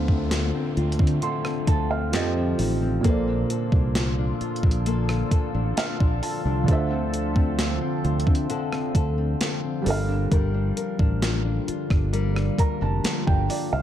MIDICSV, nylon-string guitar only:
0, 0, Header, 1, 2, 480
1, 0, Start_track
1, 0, Key_signature, -1, "minor"
1, 0, Tempo, 909091
1, 1608, Time_signature, 4, 2, 24, 8
1, 7297, End_track
2, 0, Start_track
2, 0, Title_t, "Nylon-string guitar"
2, 0, Program_c, 0, 24
2, 0, Note_on_c, 0, 50, 86
2, 0, Note_on_c, 0, 65, 60
2, 0, Note_on_c, 0, 69, 68
2, 48, Note_on_c, 0, 60, 63
2, 165, Note_off_c, 0, 65, 0
2, 167, Note_on_c, 0, 65, 66
2, 286, Note_off_c, 0, 60, 0
2, 288, Note_on_c, 0, 60, 62
2, 405, Note_off_c, 0, 65, 0
2, 407, Note_on_c, 0, 65, 67
2, 525, Note_off_c, 0, 60, 0
2, 527, Note_on_c, 0, 60, 58
2, 640, Note_off_c, 0, 50, 0
2, 647, Note_on_c, 0, 50, 82
2, 648, Note_off_c, 0, 69, 0
2, 650, Note_on_c, 0, 69, 67
2, 761, Note_off_c, 0, 60, 0
2, 767, Note_on_c, 0, 60, 62
2, 885, Note_off_c, 0, 69, 0
2, 887, Note_on_c, 0, 69, 77
2, 1001, Note_off_c, 0, 60, 0
2, 1007, Note_on_c, 0, 60, 61
2, 1126, Note_on_c, 0, 53, 86
2, 1175, Note_off_c, 0, 50, 0
2, 1175, Note_off_c, 0, 60, 0
2, 1248, Note_on_c, 0, 60, 65
2, 1366, Note_off_c, 0, 65, 0
2, 1368, Note_on_c, 0, 63, 64
2, 1384, Note_off_c, 0, 69, 0
2, 1482, Note_off_c, 0, 60, 0
2, 1488, Note_on_c, 0, 60, 59
2, 1607, Note_off_c, 0, 53, 0
2, 1609, Note_on_c, 0, 58, 84
2, 1612, Note_on_c, 0, 69, 67
2, 1656, Note_off_c, 0, 60, 0
2, 1656, Note_off_c, 0, 63, 0
2, 1729, Note_on_c, 0, 62, 61
2, 1847, Note_off_c, 0, 69, 0
2, 1849, Note_on_c, 0, 69, 66
2, 1966, Note_off_c, 0, 62, 0
2, 1968, Note_on_c, 0, 62, 63
2, 2088, Note_on_c, 0, 65, 65
2, 2207, Note_off_c, 0, 62, 0
2, 2209, Note_on_c, 0, 62, 66
2, 2327, Note_off_c, 0, 65, 0
2, 2329, Note_on_c, 0, 65, 65
2, 2447, Note_off_c, 0, 62, 0
2, 2449, Note_on_c, 0, 62, 61
2, 2562, Note_off_c, 0, 58, 0
2, 2568, Note_on_c, 0, 58, 81
2, 2569, Note_off_c, 0, 69, 0
2, 2571, Note_on_c, 0, 69, 75
2, 2685, Note_off_c, 0, 62, 0
2, 2687, Note_on_c, 0, 62, 65
2, 2804, Note_off_c, 0, 69, 0
2, 2807, Note_on_c, 0, 69, 73
2, 2925, Note_off_c, 0, 62, 0
2, 2927, Note_on_c, 0, 62, 64
2, 3044, Note_off_c, 0, 65, 0
2, 3046, Note_on_c, 0, 65, 61
2, 3164, Note_off_c, 0, 62, 0
2, 3166, Note_on_c, 0, 62, 65
2, 3284, Note_off_c, 0, 65, 0
2, 3286, Note_on_c, 0, 65, 63
2, 3405, Note_off_c, 0, 62, 0
2, 3407, Note_on_c, 0, 62, 61
2, 3528, Note_on_c, 0, 50, 85
2, 3529, Note_off_c, 0, 69, 0
2, 3531, Note_on_c, 0, 69, 72
2, 3576, Note_off_c, 0, 58, 0
2, 3645, Note_off_c, 0, 62, 0
2, 3647, Note_on_c, 0, 60, 64
2, 3758, Note_off_c, 0, 69, 0
2, 3764, Note_on_c, 0, 69, 66
2, 3878, Note_off_c, 0, 60, 0
2, 3885, Note_on_c, 0, 60, 64
2, 4003, Note_off_c, 0, 65, 0
2, 4005, Note_on_c, 0, 65, 65
2, 4119, Note_off_c, 0, 60, 0
2, 4125, Note_on_c, 0, 60, 66
2, 4244, Note_off_c, 0, 65, 0
2, 4246, Note_on_c, 0, 65, 67
2, 4360, Note_off_c, 0, 60, 0
2, 4367, Note_on_c, 0, 60, 61
2, 4484, Note_off_c, 0, 50, 0
2, 4484, Note_off_c, 0, 69, 0
2, 4486, Note_on_c, 0, 50, 87
2, 4490, Note_on_c, 0, 69, 72
2, 4602, Note_off_c, 0, 60, 0
2, 4608, Note_on_c, 0, 60, 63
2, 4722, Note_off_c, 0, 69, 0
2, 4729, Note_on_c, 0, 69, 71
2, 4840, Note_off_c, 0, 60, 0
2, 4846, Note_on_c, 0, 60, 61
2, 4964, Note_off_c, 0, 65, 0
2, 4966, Note_on_c, 0, 65, 67
2, 5080, Note_off_c, 0, 60, 0
2, 5087, Note_on_c, 0, 60, 62
2, 5206, Note_on_c, 0, 55, 82
2, 5255, Note_off_c, 0, 60, 0
2, 5256, Note_off_c, 0, 69, 0
2, 5325, Note_on_c, 0, 62, 62
2, 5440, Note_off_c, 0, 55, 0
2, 5446, Note_on_c, 0, 55, 82
2, 5448, Note_on_c, 0, 70, 68
2, 5462, Note_off_c, 0, 65, 0
2, 5564, Note_off_c, 0, 62, 0
2, 5566, Note_on_c, 0, 62, 63
2, 5679, Note_off_c, 0, 70, 0
2, 5685, Note_on_c, 0, 70, 67
2, 5803, Note_off_c, 0, 62, 0
2, 5805, Note_on_c, 0, 62, 63
2, 5925, Note_on_c, 0, 65, 66
2, 6043, Note_off_c, 0, 62, 0
2, 6045, Note_on_c, 0, 62, 61
2, 6162, Note_off_c, 0, 65, 0
2, 6165, Note_on_c, 0, 65, 66
2, 6282, Note_off_c, 0, 62, 0
2, 6284, Note_on_c, 0, 62, 58
2, 6334, Note_off_c, 0, 50, 0
2, 6398, Note_off_c, 0, 55, 0
2, 6400, Note_off_c, 0, 70, 0
2, 6404, Note_on_c, 0, 55, 89
2, 6406, Note_on_c, 0, 70, 74
2, 6523, Note_off_c, 0, 62, 0
2, 6525, Note_on_c, 0, 62, 66
2, 6637, Note_off_c, 0, 70, 0
2, 6644, Note_on_c, 0, 70, 71
2, 6762, Note_off_c, 0, 62, 0
2, 6764, Note_on_c, 0, 62, 60
2, 6881, Note_off_c, 0, 65, 0
2, 6883, Note_on_c, 0, 65, 66
2, 7002, Note_off_c, 0, 62, 0
2, 7004, Note_on_c, 0, 62, 60
2, 7121, Note_off_c, 0, 65, 0
2, 7123, Note_on_c, 0, 65, 61
2, 7242, Note_off_c, 0, 62, 0
2, 7244, Note_on_c, 0, 62, 64
2, 7297, Note_off_c, 0, 55, 0
2, 7297, Note_off_c, 0, 62, 0
2, 7297, Note_off_c, 0, 65, 0
2, 7297, Note_off_c, 0, 70, 0
2, 7297, End_track
0, 0, End_of_file